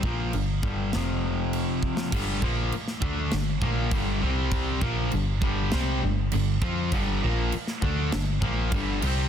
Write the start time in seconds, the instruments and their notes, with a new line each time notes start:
0.03 picked electric bass A#1, overdriven electric guitar A#2 F3 A#3, kick
0.33 picked electric bass G1, overdriven electric guitar G2 D3, crash
0.63 picked electric bass G1, overdriven electric guitar G2 D3 G3, kick
0.93 picked electric bass F1, overdriven electric guitar F2 C3 F3, snare, crash
1.53 crash
1.83 kick
1.97 snare
2.12 picked electric bass G1, overdriven electric guitar G2 D3 G3, kick, crash
2.42 picked electric bass A#1, overdriven electric guitar A#2 F3 A#3, kick
2.72 muted distorted electric guitar stroke, muted overdriven electric guitar stroke, muted picked electric bass stroke, crash
2.88 snare
3.02 picked electric bass D2, overdriven electric guitar D3 A3 D4, kick
3.31 picked electric bass G1, overdriven electric guitar G2 D3, snare, crash
3.62 picked electric bass A#1, overdriven electric guitar A#2 F3 A#3, kick
3.91 picked electric bass G1, overdriven electric guitar G2 D3 G3, kick, crash
4.23 picked electric bass C2, overdriven electric guitar C3 G3 C4
4.52 kick, crash
4.81 picked electric bass A#1, overdriven electric guitar A#2 F3 A#3, kick
5.12 picked electric bass G1, overdriven electric guitar G2 D3, crash
5.42 picked electric bass G1, overdriven electric guitar G2 D3 G3, kick
5.71 picked electric bass C2, overdriven electric guitar C3 G3 C4, snare, crash
6.04 picked electric bass G1, overdriven electric guitar G2 D3
6.32 picked electric bass G1, overdriven electric guitar G2 D3, crash
6.62 picked electric bass F2, overdriven electric guitar F3 C4 F4, kick
6.92 picked electric bass G1, overdriven electric guitar G2 D3 G3, kick, crash
7.23 picked electric bass A#1, overdriven electric guitar A#2 F3 A#3
7.52 muted distorted electric guitar stroke, muted overdriven electric guitar stroke, muted picked electric bass stroke, crash
7.67 snare
7.82 picked electric bass D2, overdriven electric guitar D3 A3 D4, kick
8.12 picked electric bass G1, overdriven electric guitar G2 D3, snare, crash
8.42 picked electric bass A#1, overdriven electric guitar A#2 F3 A#3, kick
8.72 picked electric bass G1, overdriven electric guitar G2 D3 G3, kick, crash
9.02 picked electric bass C2, overdriven electric guitar C3 G3 C4, crash